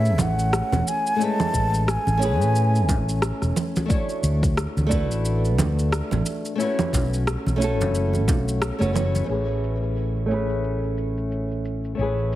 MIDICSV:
0, 0, Header, 1, 5, 480
1, 0, Start_track
1, 0, Key_signature, 3, "major"
1, 0, Tempo, 674157
1, 856, Time_signature, 4, 2, 24, 8
1, 8797, End_track
2, 0, Start_track
2, 0, Title_t, "Flute"
2, 0, Program_c, 0, 73
2, 0, Note_on_c, 0, 76, 91
2, 153, Note_on_c, 0, 78, 96
2, 164, Note_off_c, 0, 76, 0
2, 628, Note_on_c, 0, 80, 98
2, 639, Note_off_c, 0, 78, 0
2, 878, Note_on_c, 0, 81, 111
2, 889, Note_off_c, 0, 80, 0
2, 1350, Note_on_c, 0, 80, 97
2, 1361, Note_off_c, 0, 81, 0
2, 2303, Note_off_c, 0, 80, 0
2, 8797, End_track
3, 0, Start_track
3, 0, Title_t, "Nylon-string guitar"
3, 0, Program_c, 1, 24
3, 0, Note_on_c, 1, 57, 95
3, 0, Note_on_c, 1, 61, 85
3, 0, Note_on_c, 1, 64, 83
3, 0, Note_on_c, 1, 68, 86
3, 0, Note_on_c, 1, 71, 102
3, 816, Note_off_c, 1, 57, 0
3, 823, Note_off_c, 1, 61, 0
3, 827, Note_on_c, 1, 57, 73
3, 830, Note_off_c, 1, 64, 0
3, 837, Note_off_c, 1, 68, 0
3, 844, Note_on_c, 1, 61, 65
3, 845, Note_off_c, 1, 71, 0
3, 854, Note_on_c, 1, 64, 64
3, 867, Note_on_c, 1, 56, 66
3, 881, Note_on_c, 1, 71, 82
3, 1537, Note_off_c, 1, 57, 0
3, 1545, Note_off_c, 1, 56, 0
3, 1545, Note_off_c, 1, 61, 0
3, 1548, Note_on_c, 1, 57, 96
3, 1550, Note_off_c, 1, 64, 0
3, 1560, Note_on_c, 1, 61, 92
3, 1564, Note_off_c, 1, 71, 0
3, 1574, Note_on_c, 1, 64, 88
3, 1587, Note_on_c, 1, 68, 84
3, 1600, Note_on_c, 1, 71, 104
3, 2738, Note_off_c, 1, 57, 0
3, 2744, Note_off_c, 1, 61, 0
3, 2746, Note_on_c, 1, 57, 74
3, 2750, Note_off_c, 1, 64, 0
3, 2757, Note_off_c, 1, 68, 0
3, 2764, Note_off_c, 1, 71, 0
3, 2764, Note_on_c, 1, 62, 69
3, 2776, Note_on_c, 1, 64, 68
3, 2791, Note_on_c, 1, 66, 65
3, 2803, Note_on_c, 1, 73, 76
3, 3456, Note_off_c, 1, 57, 0
3, 3464, Note_on_c, 1, 57, 94
3, 3466, Note_off_c, 1, 62, 0
3, 3471, Note_off_c, 1, 64, 0
3, 3479, Note_off_c, 1, 66, 0
3, 3479, Note_on_c, 1, 62, 85
3, 3485, Note_off_c, 1, 73, 0
3, 3493, Note_on_c, 1, 64, 84
3, 3508, Note_on_c, 1, 66, 86
3, 3518, Note_on_c, 1, 71, 102
3, 4656, Note_off_c, 1, 57, 0
3, 4663, Note_off_c, 1, 62, 0
3, 4667, Note_on_c, 1, 57, 70
3, 4670, Note_off_c, 1, 64, 0
3, 4677, Note_off_c, 1, 66, 0
3, 4683, Note_off_c, 1, 71, 0
3, 4684, Note_on_c, 1, 61, 67
3, 4696, Note_on_c, 1, 64, 65
3, 4709, Note_on_c, 1, 66, 67
3, 4721, Note_on_c, 1, 71, 76
3, 5374, Note_off_c, 1, 57, 0
3, 5383, Note_on_c, 1, 57, 98
3, 5385, Note_off_c, 1, 61, 0
3, 5392, Note_off_c, 1, 64, 0
3, 5394, Note_on_c, 1, 61, 83
3, 5398, Note_off_c, 1, 66, 0
3, 5404, Note_off_c, 1, 71, 0
3, 5410, Note_on_c, 1, 64, 92
3, 5426, Note_on_c, 1, 66, 88
3, 5438, Note_on_c, 1, 69, 111
3, 6230, Note_off_c, 1, 57, 0
3, 6236, Note_off_c, 1, 61, 0
3, 6243, Note_off_c, 1, 64, 0
3, 6251, Note_off_c, 1, 66, 0
3, 6255, Note_on_c, 1, 57, 82
3, 6258, Note_off_c, 1, 69, 0
3, 6262, Note_on_c, 1, 61, 74
3, 6269, Note_on_c, 1, 64, 74
3, 6277, Note_on_c, 1, 66, 70
3, 6284, Note_on_c, 1, 71, 81
3, 6342, Note_off_c, 1, 57, 0
3, 6346, Note_off_c, 1, 61, 0
3, 6349, Note_off_c, 1, 64, 0
3, 6353, Note_off_c, 1, 66, 0
3, 6357, Note_off_c, 1, 71, 0
3, 6358, Note_on_c, 1, 57, 78
3, 6365, Note_on_c, 1, 61, 71
3, 6372, Note_on_c, 1, 64, 71
3, 6377, Note_on_c, 1, 66, 74
3, 6385, Note_on_c, 1, 71, 84
3, 6574, Note_off_c, 1, 57, 0
3, 6582, Note_on_c, 1, 57, 60
3, 6586, Note_off_c, 1, 61, 0
3, 6590, Note_off_c, 1, 64, 0
3, 6592, Note_off_c, 1, 66, 0
3, 6594, Note_on_c, 1, 61, 56
3, 6596, Note_off_c, 1, 71, 0
3, 6609, Note_on_c, 1, 64, 55
3, 6623, Note_on_c, 1, 68, 55
3, 6637, Note_on_c, 1, 71, 68
3, 7295, Note_off_c, 1, 57, 0
3, 7301, Note_off_c, 1, 61, 0
3, 7304, Note_on_c, 1, 57, 87
3, 7308, Note_off_c, 1, 64, 0
3, 7315, Note_off_c, 1, 68, 0
3, 7317, Note_on_c, 1, 61, 74
3, 7322, Note_off_c, 1, 71, 0
3, 7333, Note_on_c, 1, 64, 74
3, 7344, Note_on_c, 1, 68, 81
3, 7359, Note_on_c, 1, 71, 91
3, 8496, Note_off_c, 1, 57, 0
3, 8502, Note_off_c, 1, 61, 0
3, 8507, Note_on_c, 1, 57, 62
3, 8510, Note_off_c, 1, 64, 0
3, 8516, Note_off_c, 1, 68, 0
3, 8522, Note_on_c, 1, 61, 59
3, 8523, Note_off_c, 1, 71, 0
3, 8536, Note_on_c, 1, 64, 59
3, 8552, Note_on_c, 1, 68, 55
3, 8563, Note_on_c, 1, 71, 70
3, 8797, Note_off_c, 1, 57, 0
3, 8797, Note_off_c, 1, 61, 0
3, 8797, Note_off_c, 1, 64, 0
3, 8797, Note_off_c, 1, 68, 0
3, 8797, Note_off_c, 1, 71, 0
3, 8797, End_track
4, 0, Start_track
4, 0, Title_t, "Fretless electric bass"
4, 0, Program_c, 2, 35
4, 0, Note_on_c, 2, 45, 72
4, 131, Note_off_c, 2, 45, 0
4, 131, Note_on_c, 2, 33, 74
4, 430, Note_off_c, 2, 33, 0
4, 512, Note_on_c, 2, 28, 78
4, 577, Note_off_c, 2, 28, 0
4, 1097, Note_on_c, 2, 33, 91
4, 1392, Note_off_c, 2, 33, 0
4, 1472, Note_on_c, 2, 33, 97
4, 1713, Note_off_c, 2, 33, 0
4, 1713, Note_on_c, 2, 45, 76
4, 2056, Note_off_c, 2, 45, 0
4, 2056, Note_on_c, 2, 33, 83
4, 2352, Note_off_c, 2, 33, 0
4, 2434, Note_on_c, 2, 28, 83
4, 2498, Note_off_c, 2, 28, 0
4, 3013, Note_on_c, 2, 38, 98
4, 3311, Note_off_c, 2, 38, 0
4, 3394, Note_on_c, 2, 38, 99
4, 3634, Note_off_c, 2, 38, 0
4, 3634, Note_on_c, 2, 33, 81
4, 3975, Note_off_c, 2, 33, 0
4, 3975, Note_on_c, 2, 38, 80
4, 4272, Note_off_c, 2, 38, 0
4, 4353, Note_on_c, 2, 33, 85
4, 4418, Note_off_c, 2, 33, 0
4, 4934, Note_on_c, 2, 35, 96
4, 5231, Note_off_c, 2, 35, 0
4, 5314, Note_on_c, 2, 35, 93
4, 5553, Note_off_c, 2, 35, 0
4, 5553, Note_on_c, 2, 30, 76
4, 5896, Note_off_c, 2, 30, 0
4, 5896, Note_on_c, 2, 35, 77
4, 6192, Note_off_c, 2, 35, 0
4, 6271, Note_on_c, 2, 30, 91
4, 6554, Note_off_c, 2, 30, 0
4, 6616, Note_on_c, 2, 33, 81
4, 8515, Note_off_c, 2, 33, 0
4, 8533, Note_on_c, 2, 33, 77
4, 8797, Note_off_c, 2, 33, 0
4, 8797, End_track
5, 0, Start_track
5, 0, Title_t, "Drums"
5, 37, Note_on_c, 9, 82, 21
5, 109, Note_off_c, 9, 82, 0
5, 129, Note_on_c, 9, 64, 77
5, 133, Note_off_c, 9, 64, 0
5, 133, Note_on_c, 9, 64, 70
5, 137, Note_on_c, 9, 82, 74
5, 204, Note_off_c, 9, 64, 0
5, 208, Note_off_c, 9, 82, 0
5, 278, Note_on_c, 9, 82, 31
5, 349, Note_off_c, 9, 82, 0
5, 378, Note_on_c, 9, 37, 92
5, 381, Note_on_c, 9, 82, 42
5, 449, Note_off_c, 9, 37, 0
5, 453, Note_off_c, 9, 82, 0
5, 516, Note_on_c, 9, 64, 54
5, 520, Note_on_c, 9, 82, 20
5, 521, Note_on_c, 9, 63, 90
5, 587, Note_off_c, 9, 64, 0
5, 591, Note_off_c, 9, 82, 0
5, 592, Note_off_c, 9, 63, 0
5, 623, Note_on_c, 9, 82, 78
5, 694, Note_off_c, 9, 82, 0
5, 759, Note_on_c, 9, 82, 33
5, 830, Note_off_c, 9, 82, 0
5, 861, Note_on_c, 9, 82, 40
5, 932, Note_off_c, 9, 82, 0
5, 995, Note_on_c, 9, 64, 69
5, 999, Note_on_c, 9, 82, 21
5, 1066, Note_off_c, 9, 64, 0
5, 1070, Note_off_c, 9, 82, 0
5, 1094, Note_on_c, 9, 36, 54
5, 1097, Note_on_c, 9, 82, 66
5, 1166, Note_off_c, 9, 36, 0
5, 1169, Note_off_c, 9, 82, 0
5, 1240, Note_on_c, 9, 82, 31
5, 1311, Note_off_c, 9, 82, 0
5, 1339, Note_on_c, 9, 37, 94
5, 1343, Note_on_c, 9, 82, 39
5, 1410, Note_off_c, 9, 37, 0
5, 1414, Note_off_c, 9, 82, 0
5, 1473, Note_on_c, 9, 63, 67
5, 1479, Note_on_c, 9, 82, 21
5, 1544, Note_off_c, 9, 63, 0
5, 1550, Note_off_c, 9, 82, 0
5, 1581, Note_on_c, 9, 82, 70
5, 1652, Note_off_c, 9, 82, 0
5, 1719, Note_on_c, 9, 82, 30
5, 1725, Note_on_c, 9, 63, 49
5, 1790, Note_off_c, 9, 82, 0
5, 1796, Note_off_c, 9, 63, 0
5, 1820, Note_on_c, 9, 82, 38
5, 1891, Note_off_c, 9, 82, 0
5, 1961, Note_on_c, 9, 82, 22
5, 2032, Note_off_c, 9, 82, 0
5, 2056, Note_on_c, 9, 36, 97
5, 2058, Note_on_c, 9, 82, 71
5, 2060, Note_on_c, 9, 64, 73
5, 2127, Note_off_c, 9, 36, 0
5, 2129, Note_off_c, 9, 82, 0
5, 2131, Note_off_c, 9, 64, 0
5, 2199, Note_on_c, 9, 82, 31
5, 2270, Note_off_c, 9, 82, 0
5, 2294, Note_on_c, 9, 37, 93
5, 2297, Note_on_c, 9, 82, 41
5, 2365, Note_off_c, 9, 37, 0
5, 2369, Note_off_c, 9, 82, 0
5, 2434, Note_on_c, 9, 37, 29
5, 2438, Note_on_c, 9, 82, 22
5, 2505, Note_off_c, 9, 37, 0
5, 2509, Note_off_c, 9, 82, 0
5, 2537, Note_on_c, 9, 64, 59
5, 2541, Note_on_c, 9, 82, 73
5, 2608, Note_off_c, 9, 64, 0
5, 2612, Note_off_c, 9, 82, 0
5, 2677, Note_on_c, 9, 82, 31
5, 2682, Note_on_c, 9, 63, 93
5, 2748, Note_off_c, 9, 82, 0
5, 2753, Note_off_c, 9, 63, 0
5, 2776, Note_on_c, 9, 82, 36
5, 2777, Note_on_c, 9, 36, 103
5, 2848, Note_off_c, 9, 36, 0
5, 2848, Note_off_c, 9, 82, 0
5, 2915, Note_on_c, 9, 82, 20
5, 2986, Note_off_c, 9, 82, 0
5, 3015, Note_on_c, 9, 82, 71
5, 3086, Note_off_c, 9, 82, 0
5, 3154, Note_on_c, 9, 36, 97
5, 3158, Note_on_c, 9, 82, 32
5, 3226, Note_off_c, 9, 36, 0
5, 3229, Note_off_c, 9, 82, 0
5, 3257, Note_on_c, 9, 37, 92
5, 3261, Note_on_c, 9, 82, 40
5, 3328, Note_off_c, 9, 37, 0
5, 3332, Note_off_c, 9, 82, 0
5, 3398, Note_on_c, 9, 82, 21
5, 3401, Note_on_c, 9, 63, 58
5, 3469, Note_off_c, 9, 82, 0
5, 3472, Note_off_c, 9, 63, 0
5, 3496, Note_on_c, 9, 36, 101
5, 3497, Note_on_c, 9, 82, 72
5, 3567, Note_off_c, 9, 36, 0
5, 3569, Note_off_c, 9, 82, 0
5, 3640, Note_on_c, 9, 82, 31
5, 3711, Note_off_c, 9, 82, 0
5, 3739, Note_on_c, 9, 82, 40
5, 3810, Note_off_c, 9, 82, 0
5, 3879, Note_on_c, 9, 82, 21
5, 3950, Note_off_c, 9, 82, 0
5, 3976, Note_on_c, 9, 64, 76
5, 3980, Note_on_c, 9, 82, 70
5, 3982, Note_off_c, 9, 64, 0
5, 3982, Note_on_c, 9, 64, 78
5, 4051, Note_off_c, 9, 82, 0
5, 4053, Note_off_c, 9, 64, 0
5, 4122, Note_on_c, 9, 82, 29
5, 4193, Note_off_c, 9, 82, 0
5, 4218, Note_on_c, 9, 37, 100
5, 4222, Note_on_c, 9, 82, 41
5, 4290, Note_off_c, 9, 37, 0
5, 4294, Note_off_c, 9, 82, 0
5, 4352, Note_on_c, 9, 64, 59
5, 4356, Note_on_c, 9, 82, 20
5, 4362, Note_on_c, 9, 63, 97
5, 4424, Note_off_c, 9, 64, 0
5, 4428, Note_off_c, 9, 82, 0
5, 4433, Note_off_c, 9, 63, 0
5, 4456, Note_on_c, 9, 82, 71
5, 4527, Note_off_c, 9, 82, 0
5, 4595, Note_on_c, 9, 82, 33
5, 4666, Note_off_c, 9, 82, 0
5, 4700, Note_on_c, 9, 82, 37
5, 4771, Note_off_c, 9, 82, 0
5, 4833, Note_on_c, 9, 64, 83
5, 4837, Note_on_c, 9, 82, 22
5, 4904, Note_off_c, 9, 64, 0
5, 4908, Note_off_c, 9, 82, 0
5, 4935, Note_on_c, 9, 36, 56
5, 4941, Note_on_c, 9, 82, 74
5, 4942, Note_on_c, 9, 64, 78
5, 5006, Note_off_c, 9, 36, 0
5, 5012, Note_off_c, 9, 82, 0
5, 5013, Note_off_c, 9, 64, 0
5, 5080, Note_on_c, 9, 82, 30
5, 5151, Note_off_c, 9, 82, 0
5, 5179, Note_on_c, 9, 37, 97
5, 5182, Note_on_c, 9, 82, 42
5, 5250, Note_off_c, 9, 37, 0
5, 5254, Note_off_c, 9, 82, 0
5, 5315, Note_on_c, 9, 63, 63
5, 5325, Note_on_c, 9, 82, 21
5, 5386, Note_off_c, 9, 63, 0
5, 5396, Note_off_c, 9, 82, 0
5, 5423, Note_on_c, 9, 82, 73
5, 5494, Note_off_c, 9, 82, 0
5, 5559, Note_on_c, 9, 63, 59
5, 5561, Note_on_c, 9, 82, 32
5, 5565, Note_on_c, 9, 64, 82
5, 5630, Note_off_c, 9, 63, 0
5, 5632, Note_off_c, 9, 82, 0
5, 5636, Note_off_c, 9, 64, 0
5, 5659, Note_on_c, 9, 82, 39
5, 5730, Note_off_c, 9, 82, 0
5, 5791, Note_on_c, 9, 63, 55
5, 5799, Note_on_c, 9, 82, 21
5, 5862, Note_off_c, 9, 63, 0
5, 5870, Note_off_c, 9, 82, 0
5, 5895, Note_on_c, 9, 36, 97
5, 5899, Note_on_c, 9, 82, 73
5, 5901, Note_on_c, 9, 64, 78
5, 5966, Note_off_c, 9, 36, 0
5, 5970, Note_off_c, 9, 82, 0
5, 5972, Note_off_c, 9, 64, 0
5, 6040, Note_on_c, 9, 82, 32
5, 6111, Note_off_c, 9, 82, 0
5, 6135, Note_on_c, 9, 37, 100
5, 6139, Note_on_c, 9, 82, 40
5, 6207, Note_off_c, 9, 37, 0
5, 6210, Note_off_c, 9, 82, 0
5, 6274, Note_on_c, 9, 37, 28
5, 6278, Note_on_c, 9, 82, 21
5, 6345, Note_off_c, 9, 37, 0
5, 6349, Note_off_c, 9, 82, 0
5, 6376, Note_on_c, 9, 64, 66
5, 6380, Note_on_c, 9, 82, 71
5, 6447, Note_off_c, 9, 64, 0
5, 6451, Note_off_c, 9, 82, 0
5, 6514, Note_on_c, 9, 63, 75
5, 6517, Note_on_c, 9, 82, 33
5, 6586, Note_off_c, 9, 63, 0
5, 6588, Note_off_c, 9, 82, 0
5, 6616, Note_on_c, 9, 49, 69
5, 6620, Note_on_c, 9, 82, 34
5, 6687, Note_off_c, 9, 49, 0
5, 6691, Note_off_c, 9, 82, 0
5, 6762, Note_on_c, 9, 82, 18
5, 6833, Note_off_c, 9, 82, 0
5, 6861, Note_on_c, 9, 82, 67
5, 6932, Note_off_c, 9, 82, 0
5, 7000, Note_on_c, 9, 82, 26
5, 7071, Note_off_c, 9, 82, 0
5, 7097, Note_on_c, 9, 82, 38
5, 7169, Note_off_c, 9, 82, 0
5, 7235, Note_on_c, 9, 82, 18
5, 7306, Note_off_c, 9, 82, 0
5, 7339, Note_on_c, 9, 82, 66
5, 7410, Note_off_c, 9, 82, 0
5, 7473, Note_on_c, 9, 82, 29
5, 7544, Note_off_c, 9, 82, 0
5, 7574, Note_on_c, 9, 82, 38
5, 7645, Note_off_c, 9, 82, 0
5, 7714, Note_on_c, 9, 82, 19
5, 7786, Note_off_c, 9, 82, 0
5, 7814, Note_on_c, 9, 82, 61
5, 7885, Note_off_c, 9, 82, 0
5, 7956, Note_on_c, 9, 82, 28
5, 8027, Note_off_c, 9, 82, 0
5, 8057, Note_on_c, 9, 82, 38
5, 8128, Note_off_c, 9, 82, 0
5, 8195, Note_on_c, 9, 82, 18
5, 8266, Note_off_c, 9, 82, 0
5, 8295, Note_on_c, 9, 82, 68
5, 8366, Note_off_c, 9, 82, 0
5, 8433, Note_on_c, 9, 82, 29
5, 8504, Note_off_c, 9, 82, 0
5, 8536, Note_on_c, 9, 82, 37
5, 8607, Note_off_c, 9, 82, 0
5, 8673, Note_on_c, 9, 82, 20
5, 8744, Note_off_c, 9, 82, 0
5, 8775, Note_on_c, 9, 82, 65
5, 8797, Note_off_c, 9, 82, 0
5, 8797, End_track
0, 0, End_of_file